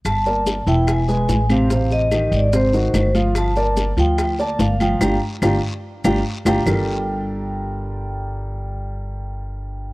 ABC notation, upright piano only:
X:1
M:4/4
L:1/8
Q:1/4=145
K:Gm
V:1 name="Upright piano"
z [B,Bd]2 [=E,=E=e]2 [^G,^G=B]2 [C,Cc] | [C,Cc]2 [E,EG]2 [C,Cc] [E,E_G]2 [F,Ff]- | [F,Ff] [B,Bd]2 [F,Ff]2 [B,Bd]2 [F,Ff] | [DFG] z [DFG] z2 [DFG] z [DFG] |
[G,DFGAB]8- | [G,DFGAB]8 |]